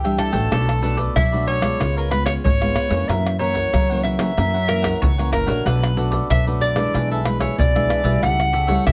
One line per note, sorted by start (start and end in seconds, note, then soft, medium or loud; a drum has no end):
0.00 0.14 E2 medium
0.00 0.49 E3 medium
0.00 0.21 G4 loud
0.00 0.18 G5 medium
0.05 0.31 G3 medium
0.05 0.31 D4 medium
0.05 0.32 E4 medium
0.05 0.17 A4 soft
0.05 0.18 E5 medium
0.05 pandeiro soft
0.05 tamborim medium
0.05 shaker soft
0.18 0.34 D4 soft
0.18 0.32 A4 medium
0.18 0.51 A4 loud
0.18 0.32 E5 medium
0.18 0.31 G5 medium
0.18 pandeiro medium
0.18 tamborim medium
0.18 shaker medium
0.32 0.48 A1 loud
0.32 0.78 A3 medium
0.32 0.78 D4 medium
0.32 0.78 F#4 medium
0.32 0.49 A4 medium
0.32 0.49 E5 medium
0.32 0.49 G5 medium
0.32 pandeiro medium
0.32 shaker medium
0.32 surdo soft
0.51 1.06 B1 loud
0.51 1.13 B2 medium
0.51 0.66 D4 medium
0.51 0.66 A4 soft
0.51 0.97 A4 medium
0.51 0.67 B4 medium
0.51 0.67 D5 medium
0.51 pandeiro medium
0.51 tamborim medium
0.51 shaker medium
0.51 surdo medium
0.68 muted cavaquinho stroke soft
0.68 pandeiro soft
0.68 tamborim medium
0.68 shaker soft
0.82 1.14 A3 medium
0.82 0.98 D4 medium
0.82 1.14 D4 medium
0.82 1.14 F#4 medium
0.82 0.97 A4 medium
0.82 0.96 B4 medium
0.82 0.96 D5 medium
0.82 pandeiro medium
0.97 1.14 A4 medium
0.97 1.14 B4 medium
0.97 1.13 D5 medium
0.97 pandeiro medium
0.97 shaker medium
0.97 surdo soft
1.15 1.71 B2 medium
1.15 1.77 F#3 medium
1.15 1.31 D4 medium
1.15 1.31 A4 medium
1.15 1.46 E5 loud
1.15 pandeiro medium
1.15 tamborim medium
1.15 shaker medium
1.15 surdo loud
1.32 1.60 A3 medium
1.32 1.60 D4 medium
1.32 1.60 F#4 medium
1.32 1.61 A4 medium
1.32 1.61 B4 medium
1.32 1.60 D5 medium
1.32 pandeiro soft
1.32 shaker soft
1.47 1.93 C#5 loud
1.47 pandeiro medium
1.47 shaker medium
1.47 surdo soft
1.61 2.06 G#3 medium
1.61 2.06 B3 medium
1.61 2.06 F4 medium
1.61 1.78 A4 medium
1.61 1.78 B4 medium
1.61 1.77 D5 medium
1.61 pandeiro medium
1.61 tamborim loud
1.61 shaker medium
1.61 surdo soft
1.79 2.35 C#2 medium
1.79 2.42 C#3 medium
1.79 1.95 F4 medium
1.79 1.95 B4 medium
1.79 1.95 C#5 medium
1.79 1.95 F5 medium
1.79 pandeiro medium
1.79 tamborim medium
1.79 shaker medium
1.79 surdo medium
1.96 2.11 A#4 medium
1.96 2.09 B4 medium
1.96 2.10 C#5 medium
1.96 2.10 F5 medium
1.96 pandeiro soft
1.96 shaker soft
2.10 2.42 G#3 medium
2.10 2.42 B3 medium
2.10 2.43 F4 medium
2.10 2.25 B4 loud
2.10 muted cavaquinho stroke soft
2.10 pandeiro medium
2.10 tamborim medium
2.10 shaker medium
2.25 2.58 B4 medium
2.25 2.34 C#5 medium
2.25 2.58 C#5 medium
2.25 2.58 F5 medium
2.25 pandeiro medium
2.25 tamborim medium
2.25 shaker medium
2.25 surdo soft
2.44 2.72 G#1 medium
2.44 3.06 G#2 medium
2.44 3.10 C#5 loud
2.44 pandeiro medium
2.44 shaker medium
2.44 surdo loud
2.61 2.88 G#3 medium
2.61 2.88 B3 medium
2.61 2.89 F4 medium
2.61 2.74 B4 medium
2.61 2.74 C#5 medium
2.61 2.75 F5 medium
2.61 pandeiro soft
2.61 tamborim medium
2.61 shaker soft
2.74 2.90 F4 medium
2.74 2.90 B4 medium
2.74 2.89 C#5 medium
2.74 2.88 F5 medium
2.74 pandeiro medium
2.74 tamborim medium
2.74 shaker medium
2.89 3.05 F2 medium
2.89 3.35 E3 medium
2.89 3.35 A#3 medium
2.89 3.35 C#4 medium
2.89 3.07 B4 medium
2.89 3.06 C#5 medium
2.89 3.06 F5 medium
2.89 pandeiro medium
2.89 shaker medium
2.89 surdo soft
3.08 3.63 F#2 medium
3.08 3.70 F#2 medium
3.08 3.23 E4 soft
3.08 3.23 A#4 medium
3.08 3.24 C#5 medium
3.08 3.39 E5 loud
3.08 3.24 F#5 medium
3.08 pandeiro medium
3.08 tamborim medium
3.08 shaker medium
3.08 surdo medium
3.25 muted cavaquinho stroke soft
3.25 pandeiro soft
3.25 tamborim medium
3.25 shaker soft
3.39 3.71 E3 medium
3.39 3.71 A#3 medium
3.39 3.71 C#4 medium
3.39 3.55 E4 medium
3.39 3.54 A#4 medium
3.39 4.01 C#5 loud
3.39 3.53 C#5 medium
3.39 3.52 F#5 medium
3.39 pandeiro medium
3.53 3.71 A#4 medium
3.53 3.70 C#5 medium
3.53 3.70 F#5 medium
3.53 pandeiro medium
3.53 shaker medium
3.53 surdo soft
3.72 4.35 C#3 medium
3.72 4.28 F#3 medium
3.72 3.88 E4 medium
3.72 3.88 A#4 soft
3.72 3.88 C#5 medium
3.72 3.88 F#5 medium
3.72 pandeiro medium
3.72 tamborim medium
3.72 shaker medium
3.72 surdo loud
3.90 4.17 E3 medium
3.90 4.17 A#3 medium
3.90 4.17 C#4 medium
3.90 4.18 A#4 medium
3.90 4.18 C#5 medium
3.90 4.17 F#5 medium
3.90 pandeiro soft
3.90 shaker soft
4.04 5.29 E5 loud
4.04 pandeiro medium
4.04 shaker medium
4.18 4.31 E3 medium
4.18 4.31 A#3 medium
4.18 4.32 C#4 medium
4.18 4.35 A#4 medium
4.18 4.35 C#5 medium
4.18 4.35 F#5 medium
4.18 pandeiro medium
4.18 tamborim medium
4.18 shaker medium
4.18 surdo soft
4.37 4.92 F#2 loud
4.37 4.99 F#2 medium
4.37 4.57 E3 medium
4.37 4.57 A#3 medium
4.37 4.57 C#4 medium
4.37 4.52 E4 soft
4.37 4.52 A#4 soft
4.37 4.53 C#5 medium
4.37 4.53 F#5 medium
4.37 pandeiro medium
4.37 tamborim medium
4.37 shaker medium
4.37 surdo soft
4.54 4.67 A#4 medium
4.54 4.67 C#5 medium
4.54 4.67 F#5 medium
4.54 pandeiro soft
4.54 shaker soft
4.68 5.12 E3 medium
4.68 5.12 A#3 medium
4.68 5.12 C#4 medium
4.68 5.01 A#4 medium
4.68 muted cavaquinho stroke soft
4.68 pandeiro medium
4.68 tamborim medium
4.68 shaker medium
4.82 5.16 A#4 soft
4.82 5.15 C#5 medium
4.82 5.15 F#5 medium
4.82 pandeiro medium
4.82 tamborim medium
4.82 shaker medium
4.82 surdo soft
5.02 5.29 C#2 medium
5.02 5.63 C#3 medium
5.02 5.32 C#5 loud
5.02 pandeiro medium
5.02 shaker medium
5.02 surdo loud
5.18 5.45 E3 medium
5.18 5.45 A#3 medium
5.18 5.46 C#4 medium
5.18 5.31 A#4 medium
5.18 5.32 C#5 medium
5.18 5.32 F#5 medium
5.18 pandeiro soft
5.18 tamborim medium
5.18 shaker soft
5.32 5.46 F#1 medium
5.32 5.48 E4 soft
5.32 5.47 A#4 medium
5.32 5.63 A#4 medium
5.32 5.46 C#5 medium
5.32 5.45 F#5 medium
5.32 pandeiro medium
5.32 tamborim medium
5.32 shaker medium
5.46 5.63 A#1 medium
5.46 5.91 A3 medium
5.46 5.92 D4 medium
5.46 5.92 F#4 medium
5.46 5.64 A#4 medium
5.46 5.63 C#5 medium
5.46 5.63 F#5 medium
5.46 pandeiro medium
5.46 shaker medium
5.46 surdo soft
5.65 6.20 B1 loud
5.65 6.27 B2 medium
5.65 5.81 D4 soft
5.65 5.81 A4 medium
5.65 6.11 B4 medium
5.65 5.81 B4 medium
5.65 5.81 D5 medium
5.65 pandeiro medium
5.65 tamborim medium
5.65 shaker medium
5.65 surdo medium
5.83 muted cavaquinho stroke soft
5.83 pandeiro soft
5.83 tamborim medium
5.83 shaker soft
5.96 6.27 A3 medium
5.96 6.12 D4 medium
5.96 6.28 D4 medium
5.96 6.28 F#4 medium
5.96 6.11 A4 medium
5.96 6.10 B4 medium
5.96 6.10 D5 medium
5.96 pandeiro medium
5.96 shaker medium
6.11 6.28 A4 medium
6.11 6.28 B4 medium
6.11 6.27 D5 medium
6.11 pandeiro medium
6.11 shaker medium
6.11 surdo soft
6.30 6.91 F#2 medium
6.30 6.85 B2 medium
6.30 6.45 D4 medium
6.30 6.45 A4 soft
6.30 6.45 B4 medium
6.30 6.46 D5 medium
6.30 6.45 E5 loud
6.30 pandeiro medium
6.30 tamborim medium
6.30 shaker medium
6.30 surdo medium
6.47 6.74 A3 medium
6.47 6.74 D4 medium
6.47 6.74 F#4 medium
6.47 6.76 A4 medium
6.47 6.75 B4 medium
6.47 6.74 D5 medium
6.47 pandeiro soft
6.47 shaker soft
6.61 7.07 D5 loud
6.61 pandeiro medium
6.61 shaker medium
6.61 surdo soft
6.75 7.20 E3 medium
6.75 7.20 G#3 medium
6.75 7.20 D4 medium
6.75 6.92 A4 medium
6.75 6.92 B4 medium
6.75 6.92 D5 medium
6.75 pandeiro medium
6.75 tamborim medium
6.75 shaker medium
6.75 surdo soft
6.94 7.49 B1 loud
6.94 7.55 B2 medium
6.94 7.09 D4 soft
6.94 7.09 G#4 soft
6.94 7.10 B4 medium
6.94 7.10 E5 medium
6.94 pandeiro medium
6.94 tamborim medium
6.94 shaker medium
6.94 surdo medium
7.11 7.24 G#4 medium
7.11 7.25 A4 medium
7.11 7.25 B4 medium
7.11 7.25 E5 medium
7.11 pandeiro soft
7.11 shaker soft
7.25 7.56 E3 medium
7.25 7.56 G#3 medium
7.25 7.56 D4 medium
7.25 7.40 B4 medium
7.25 muted cavaquinho stroke soft
7.25 pandeiro medium
7.25 tamborim medium
7.25 shaker medium
7.40 7.73 G#4 medium
7.40 7.72 B4 medium
7.40 7.56 C#5 medium
7.40 7.72 E5 medium
7.40 pandeiro medium
7.40 tamborim medium
7.40 shaker medium
7.40 surdo soft
7.58 7.86 B1 medium
7.58 8.20 B2 medium
7.58 8.19 D5 loud
7.58 pandeiro medium
7.58 shaker medium
7.58 surdo loud
7.75 8.02 E3 medium
7.75 8.02 G#3 medium
7.75 8.02 D4 medium
7.75 7.88 G#4 medium
7.75 7.88 B4 medium
7.75 7.89 E5 medium
7.75 pandeiro soft
7.75 tamborim medium
7.75 shaker soft
7.89 8.04 D4 soft
7.89 8.04 G#4 medium
7.89 8.03 B4 medium
7.89 8.02 E5 medium
7.89 pandeiro medium
7.89 tamborim medium
7.89 shaker medium
8.03 8.19 B1 loud
8.03 8.48 G3 medium
8.03 8.49 A3 medium
8.03 8.49 E4 medium
8.03 8.21 G#4 medium
8.03 8.20 B4 medium
8.03 8.20 E5 medium
8.03 pandeiro medium
8.03 shaker medium
8.03 surdo soft
8.22 8.77 C#2 medium
8.22 8.84 C#3 medium
8.22 8.37 G4 medium
8.22 8.37 A4 medium
8.22 8.38 C#5 soft
8.22 8.38 E5 medium
8.22 8.83 F#5 loud
8.22 pandeiro medium
8.22 tamborim medium
8.22 shaker medium
8.22 surdo medium
8.39 muted cavaquinho stroke soft
8.39 pandeiro soft
8.39 tamborim medium
8.39 shaker soft
8.52 8.68 G4 medium
8.52 8.67 A4 medium
8.52 8.67 C#5 medium
8.52 8.66 E5 medium
8.52 pandeiro medium
8.52 shaker medium
8.67 8.92 G3 medium
8.67 8.92 A3 medium
8.67 8.92 E4 medium
8.67 8.84 A4 medium
8.67 8.84 C#5 medium
8.67 8.84 E5 medium
8.67 pandeiro medium
8.67 shaker medium
8.67 surdo soft
8.86 8.92 C#3 medium
8.86 8.92 G4 soft
8.86 8.92 A4 medium
8.86 8.92 C#5 medium
8.86 8.92 E5 loud
8.86 8.92 E5 medium
8.86 pandeiro medium
8.86 tamborim medium
8.86 shaker medium
8.86 surdo medium